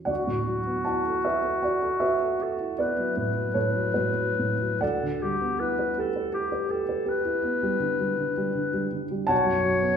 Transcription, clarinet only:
0.09 F#4
2.43 A4
2.80 B4
3.18 B4
4.82 A4
5.22 G4
5.60 B4
5.99 A4
6.34 G4
6.71 A4
7.09 B4
9.29 C#5

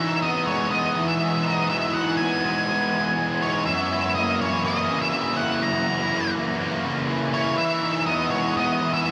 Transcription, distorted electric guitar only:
Already playing: E3 D#4
0.21 B3
0.45 G#3
0.70 B3
0.95 E3
1.20 G#3
1.44 D#4
1.71 E3
1.96 D#4
2.21 B3
2.44 G#3
2.69 B3
2.93 E3
3.17 G#3
3.42 D#4
3.66 F#2
3.91 E4
4.15 A#3
4.40 E3
4.65 A#3
4.90 C#3
5.14 E3
5.37 E4
5.64 F#2
5.88 E4
6.11 A#3
6.35 E3
6.59 A#3
6.84 C#3
7.07 E3
7.33 E4
7.58 E3
7.82 D#4
8.07 B3
8.32 G#3
8.56 B3
8.81 E3
9.04 G#3

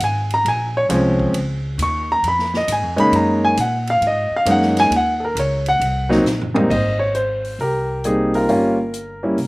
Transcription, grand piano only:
0.04 G#5
0.34 A#5
0.48 G#5
0.77 C#5
0.89 F3 G#3 C4 C#4
1.83 C#6
2.12 A#5
2.28 B5
2.57 D#5
2.72 G#5
2.96 G#3 A#3 C#4 D#4 B5
3.16 A#5
3.45 G#5
3.60 F#5
3.90 F5
4.07 D#5
4.36 F5
4.46 G#3 A#3 C#4 D#4
4.51 F#5
4.80 G#5
4.96 F#5
5.20 A4
5.25 A#4
5.39 C#5
5.69 F#5
6.09 F#3 A#3 C4 D#4
6.55 G#2 G3 A#3 C4 D#4
6.70 C5 D#5
6.99 C#5
7.15 C5
7.61 G4 A#4
8.05 G3 A#3 C4 D#4 G#4
8.35 F4 A#4
8.49 G3 A#3 C#4 F4
9.23 G3 A#3 C#4 E4

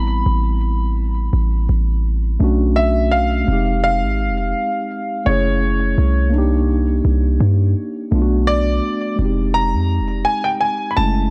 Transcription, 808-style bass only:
Already playing: A1
0.26 A1
1.33 A1
1.69 A1
2.40 B1
3.48 F1
4.03 G#1
4.29 F1
5.27 F#1
5.98 C2
7.05 C2
7.40 G2
8.12 B1
9.19 F1
9.74 F2
10.00 F1
10.98 F#1

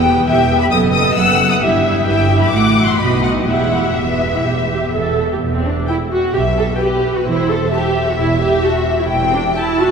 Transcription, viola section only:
0.07 B3 G4
0.29 B3 G4
0.51 B3 G4
0.73 B3 A4
0.95 B3 A4
1.18 B3 A4
1.40 B3 A4
1.63 E4 G4
1.86 E4 G4
2.08 E4 G4
2.31 E4 G4
2.53 E4 F#4
2.76 E4 F#4
3.01 D#4 F#4
3.24 D#4 F#4
3.48 E4 G4
3.72 E4 G4
3.97 B3
4.33 E4
4.46 G4
4.69 G4
4.94 A4
5.32 G4
5.54 C4
5.65 D4
5.89 E4
6.11 F#4
6.34 G4
6.57 A4
6.79 G4
7.16 F#4
7.27 E4
7.50 A4
7.73 G4
8.09 F#4
8.19 E4
8.42 G4
8.65 F#4
9.00 E4
9.22 C4
9.33 D4
9.55 E4
9.78 F#4

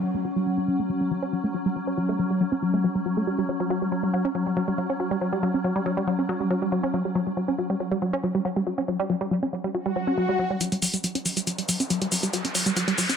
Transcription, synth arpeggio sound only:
0.03 F#3
0.14 A3
0.25 F#3
0.36 G3
0.46 F#3
0.58 C#4
0.68 F#3
0.79 A3
0.90 F#3
1.01 G3
1.11 F#3
1.23 C#4
1.33 F#3
1.44 A3
1.54 F#3
1.66 G3
1.76 F#3
1.87 C#4
1.98 F#3
2.09 A3
2.19 F#3
2.31 G3
2.41 F#3
2.52 C#4
2.62 F#3
2.74 A3
2.84 F#3
2.95 G3
3.06 F#3
3.17 A3
3.27 G3
3.38 G3
3.49 F#3
3.60 F#3
3.70 F#3
3.82 G3
3.92 F#3
4.03 G3
4.14 F#3
4.25 C#4
4.35 F#3
4.46 G3
4.57 F#3
4.68 G3
4.78 F#3
4.90 C#4
5.00 F#3
5.11 G3
5.21 F#3
5.33 G3
5.43 F#3
5.54 C#4
5.64 F#3
5.76 G3
5.86 F#3
5.97 G3
6.08 F#3
6.19 C#4
6.29 F#3
6.40 G3
6.51 F#3
6.62 G3
6.72 F#3
6.83 C#4
6.94 F#3
7.05 G3
7.16 F#3
7.27 G3
7.37 F#3
7.48 C#4
7.59 F#3
7.70 G3
7.80 F#3
7.92 G3
8.02 F#3
8.13 C#4
8.24 F#3
8.35 G3
8.45 F#3
8.56 G3
8.67 F#3
8.78 C#4
8.88 F#3
9.00 G3
9.10 F#3
9.21 G3
9.31 F#3
9.43 C#4
9.53 F#3
9.64 G3
9.74 F#3
9.86 G3
9.96 F#3
10.07 C#4
10.18 F#3
10.29 G3
10.39 F#3
10.50 G3
10.61 F#3
10.72 G3
10.82 F#3
10.94 G3
11.04 F#3
11.15 C#4
11.25 F#3
11.37 G3
11.47 F#3
11.58 G3
11.69 F#3
11.80 C#4
11.90 F#3
12.02 G3
12.12 F#3
12.23 G3
12.33 F#3
12.45 C#4
12.55 F#3
12.66 G3
12.77 F#3
12.88 G3
12.98 F#3
13.09 C#4

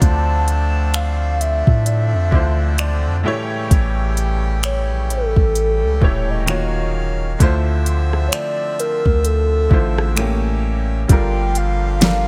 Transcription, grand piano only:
Already playing: D3 C4 D4 F4 C5
2.31 D3 D4 E4 F4
2.35 C5
2.79 D5
3.24 A2 A3 E4 G4 G5
3.28 C#5
6.00 A2 A3 E4 G4
6.04 C#5
6.46 D#3 A#3 F4 F#4
6.50 C#5
7.39 D3 A3 E4 F4
7.43 C5
9.69 D3 A3 E4 F4
9.73 C5
10.15 A2 A3 C#4 G4
10.20 A#3
11.08 G3 D4 F4 A4
11.12 A#4
12.00 G3 D4 F4 A4
12.04 A#4

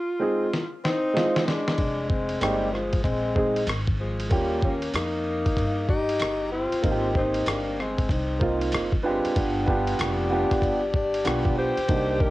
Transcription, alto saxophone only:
Already playing: F4
0.85 D#4
1.48 D4
2.10 C4
2.42 A#3
2.72 G#3
3.04 C4
4.00 G#3
4.32 A#3
4.63 C#4
4.95 D#4
5.90 G4
6.53 F4
7.17 D#4
7.49 D4
7.80 C4
8.12 D#4
9.07 C4
9.38 D4
9.69 F4
10.00 G4
10.95 G4
11.58 C5
12.21 A#4

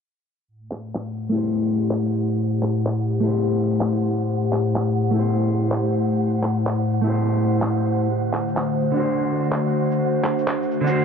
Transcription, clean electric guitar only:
1.29 A3 E4
1.35 G4 C5
3.20 A3 E4
3.26 G4 C5
5.11 A3 E4
5.16 G4 C5
7.02 A3 E4
7.07 G4 C5
8.92 D3 D4
8.97 F#4 C5
10.81 D3 D4
10.87 F#4 C5

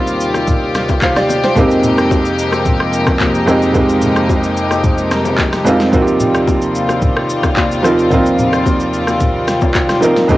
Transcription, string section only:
Already playing: D#2 C3 F4 G4
1.56 F2 G#3 A#3 D#4
5.93 D#2 G3 F4
10.29 F2 C3 G#3 A#3 D#4 G4

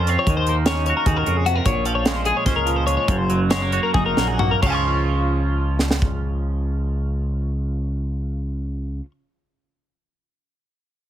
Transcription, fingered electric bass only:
Already playing: F2
0.27 D#2
1.06 D#2
1.27 F2
1.66 A#1
2.46 C#2
3.08 F#1
3.95 F#1
4.17 A#1
4.63 C#2

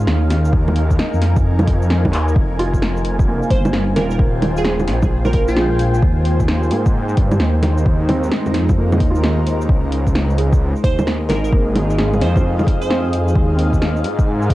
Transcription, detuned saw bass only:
0.07 D#2
1.13 F2
2.13 D#2
2.36 F1
3.50 G1
3.96 D#1
4.88 A#1
6.03 D#2
6.70 G#2
7.17 G2
7.40 D#2
8.46 F2
9.00 D#2
9.46 D#2
9.69 C#2
10.84 D#2
11.29 G#1
12.21 F2
13.35 D#2
14.04 G#2
14.50 G#2

